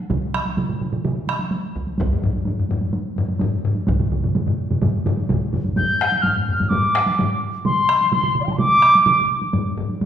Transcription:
0.10 taiko medium
0.10 taiko mid medium
0.10 taiko high medium
0.34 taiko rim medium
0.34 taiko high soft
0.46 taiko high soft
0.57 taiko mid medium
0.57 taiko high medium
0.69 taiko mid medium
0.81 taiko mid medium
0.81 taiko high soft
0.93 taiko mid medium
0.93 taiko high medium
1.04 taiko mid loud
1.04 taiko high medium
1.27 taiko rim medium
1.27 taiko high soft
1.39 taiko high medium
1.51 taiko high medium
1.76 taiko medium
1.87 taiko high medium
1.98 taiko loud
1.98 taiko low-mid medium
1.98 taiko high medium
2.13 taiko low-mid medium
2.22 taiko low-mid medium
2.22 taiko high soft
2.33 taiko high soft
2.45 taiko low-mid medium
2.45 taiko high medium
2.59 taiko low-mid medium
2.69 taiko low-mid loud
2.69 taiko high medium
2.81 taiko high medium
2.93 taiko high medium
3.16 taiko low-mid loud
3.16 taiko high medium
3.29 taiko high medium
3.39 taiko low-mid loud
3.39 taiko high medium
3.65 taiko low-mid medium
3.75 taiko high medium
3.87 taiko medium
3.87 taiko low-mid medium
3.87 taiko mid medium
3.87 taiko high medium
4.00 taiko low-mid medium
4.00 taiko mid medium
4.10 taiko low-mid medium
4.10 taiko mid medium
4.10 taiko high medium
4.23 taiko low-mid medium
4.23 taiko mid medium
4.23 taiko high medium
4.35 taiko low-mid medium
4.35 taiko mid medium
4.35 taiko high medium
4.47 taiko low-mid medium
4.47 taiko mid medium
4.70 taiko low-mid medium
4.70 taiko mid medium
4.70 taiko high medium
4.82 taiko low-mid medium
4.82 taiko mid medium
4.82 taiko high medium
5.05 taiko low-mid medium
5.05 taiko mid medium
5.05 taiko high medium
5.17 taiko high medium
5.29 taiko medium
5.29 taiko low-mid loud
5.29 taiko mid medium
5.29 taiko high medium
5.53 taiko medium
5.53 taiko low-mid medium
5.53 taiko mid medium
5.53 taiko high medium
5.64 taiko high medium
5.76 6.23 G6 loud
5.76 taiko low-mid medium
5.76 taiko high medium
6.01 taiko rim medium
6.12 taiko high medium
6.22 6.70 F6 medium
6.22 taiko low-mid medium
6.22 taiko high medium
6.36 taiko low-mid medium
6.49 taiko low-mid medium
6.60 taiko low-mid medium
6.60 taiko high medium
6.69 7.40 D6 medium
6.69 taiko low-mid loud
6.69 taiko high medium
6.95 taiko rim medium
7.06 taiko high medium
7.19 taiko low-mid medium
7.19 taiko high medium
7.65 8.09 C6 medium
7.65 taiko mid medium
7.65 taiko high medium
7.89 taiko rim medium
8.01 taiko high medium
8.11 8.40 C6 medium
8.11 taiko mid medium
8.11 taiko high medium
8.23 taiko mid medium
8.35 taiko mid medium
8.41 8.43 D5 soft
8.41 8.46 F5 soft
8.47 8.50 G5 soft
8.47 taiko mid medium
8.47 taiko high medium
8.51 8.53 A5 medium
8.51 8.57 C6 medium
8.58 9.25 D6 loud
8.58 taiko mid medium
8.58 taiko high medium
8.82 taiko rim medium
8.95 taiko high medium
9.06 taiko mid medium
9.06 taiko high medium
9.42 taiko high medium
9.53 taiko low-mid medium
9.53 taiko high medium
9.78 taiko low-mid loud
9.89 taiko high medium
10.01 taiko low-mid medium
10.01 taiko high medium

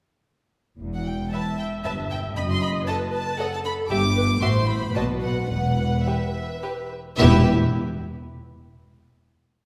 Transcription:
0.79 1.24 E1 soft
0.79 1.24 E2 soft
0.94 1.06 F#5 soft
1.06 1.33 G5 soft
1.32 1.42 B4 soft
1.32 2.33 E5 soft
1.32 1.41 E5 soft
1.32 1.58 A5 medium
1.58 1.66 G5 soft
1.85 2.28 G1 soft
1.85 2.28 G2 soft
1.85 1.93 B4 soft
1.85 1.93 E5 soft
1.85 1.93 A5 medium
2.11 2.19 G5 medium
2.36 2.80 F#1 medium
2.36 2.80 F#2 medium
2.36 2.89 D#5 medium
2.36 2.42 B5 medium
2.51 2.63 C6 medium
2.62 2.70 B5 medium
2.87 2.97 A4 soft
2.87 3.40 B4 medium
2.87 2.96 D#5 medium
2.87 2.95 A5 medium
3.13 3.39 A5 medium
3.39 3.47 A4 medium
3.39 3.91 A4 medium
3.39 3.47 D#5 medium
3.39 3.53 F#5 medium
3.53 3.58 A5 medium
3.65 3.73 B5 medium
3.90 4.34 G1 medium
3.90 4.34 G2 medium
3.90 3.98 G4 medium
3.90 4.17 G4 medium
3.90 3.98 E5 medium
3.90 4.42 D6 medium
4.17 4.25 B4 medium
4.42 4.86 A1 medium
4.42 4.87 A2 medium
4.42 4.50 F#4 soft
4.42 4.94 C5 medium
4.42 4.50 E5 soft
4.42 4.69 C6 medium
4.68 4.95 B5 medium
4.95 5.41 B1 medium
4.95 5.41 B2 medium
4.95 5.04 F#4 soft
4.95 5.49 B4 soft
4.95 5.04 D#5 soft
4.95 5.04 A5 medium
5.22 5.49 F#5 medium
5.50 5.97 E1 soft
5.50 5.97 E2 soft
5.50 6.88 B4 soft
5.50 6.06 F#5 medium
6.06 6.14 G4 soft
6.06 6.14 B4 soft
6.06 6.91 E5 soft
6.63 6.71 G4 soft
6.63 6.71 B4 soft
7.19 7.50 E1 medium
7.19 7.50 E2 medium
7.19 7.49 B3 medium
7.19 7.49 E4 medium
7.19 7.50 G4 medium
7.19 7.50 B4 medium
7.19 7.49 E5 medium

